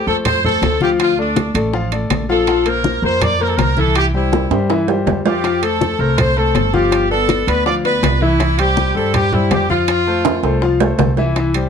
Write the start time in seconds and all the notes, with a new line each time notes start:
0.07 F2 A3 A4 C5, high conga
0.25 C5, high bongo, high conga, low conga, high timbale
0.44 A3 A4 C5, high conga, low conga
0.62 D2, high bongo, low bongo, high timbale
0.81 F3 F4 G4 F5, high conga
0.99 F4, high bongo, high conga, high timbale
1.18 A3 D4 A4 D5, high conga
1.36 high bongo, high conga, high timbale
1.54 A1 A3 A4 D5, high bongo, high conga, high timbale
1.73 F3 F4 F5, high bongo, high conga
1.92 A3 A4 D5, high bongo, high conga, high timbale
2.10 A#1, high bongo, low bongo, high conga, high timbale
2.29 F3 F4 A4 F5, high bongo, high conga
2.47 F3 F4 F5, high bongo, high conga, high timbale
2.66 A#3 A#4 C5, high conga, high timbale
2.84 high bongo, high conga
3.02 F2 A#3 A#4 C5, high conga
3.21 D5, high bongo, high conga, low conga, high timbale
3.40 A#3 A#4 C5, high conga
3.48 A4
3.55 C2 A#4, high bongo, low bongo, high conga, high timbale
3.77 E3 E4 A4 E5, high conga
3.95 G4, high bongo, high conga, high timbale
4.14 G3 E4 G4 C5, high conga
4.33 high bongo, high conga, high timbale
4.50 G2 G3 G4 C5, high bongo, high conga, high timbale
4.70 E3 E4 E5, high bongo, high conga, high timbale
4.88 G3 G4 C5, high bongo, high conga, low timbale
5.06 F2, high bongo, low bongo, high conga, low timbale
5.25 F3 F4 G4 F5, high bongo, high conga, low timbale
5.44 F3 F4 F5, high bongo, high conga, high timbale
5.62 A3 A4 C5, high conga, high timbale
5.81 high bongo, high conga
5.99 C2 A3 A4 A#4 C5, high conga
6.18 C5, high bongo, high conga, low conga, high timbale
6.36 A3 A4 C5, high conga
6.55 G1, high bongo, low bongo, high conga, high timbale
6.73 F3 F4 G4 F5, high conga
6.92 high bongo, high conga, high timbale
7.10 B3 A4 B4 D5, high conga
7.29 high bongo, high conga, high timbale
7.47 D2 B3 B4 D5, high bongo, high conga, high timbale
7.66 F3 F4 D5 F5, high bongo, high conga
7.84 B3 B4 D5, high bongo, high conga, high timbale
8.03 C2, high bongo, low bongo, high conga, high timbale, low timbale
8.21 E3 E4 E5, high bongo, high conga
8.40 E3 E4 E5, high bongo, high conga, high timbale
8.58 G3 G4 C5, high conga, high timbale
8.77 high bongo, high conga
8.95 G2 G3 G4 A4 C5, high conga
9.14 G4, high bongo, high conga, low conga, high timbale
9.33 G3 E4 G4 C5, high conga, low conga
9.51 F2 G4, high bongo, low bongo, high conga, high timbale, low timbale
9.70 F3 F4 F5, high conga
9.88 high bongo, high conga, high timbale
10.07 A3 A4 C5, high conga
10.25 high bongo, high conga, high timbale
10.43 C2 A3 A4 C5, high bongo, high conga, high timbale
10.62 F3 F4 F5, high bongo, high conga
10.80 A3 A4 C5, high bongo, high conga, low timbale
10.98 C2, high bongo, low bongo, high conga, low timbale
11.17 E3 E4 E5, high bongo, high conga, low timbale
11.36 E3 E4 E5, high bongo, high conga, high timbale
11.54 G3 G4 C5, high conga, high timbale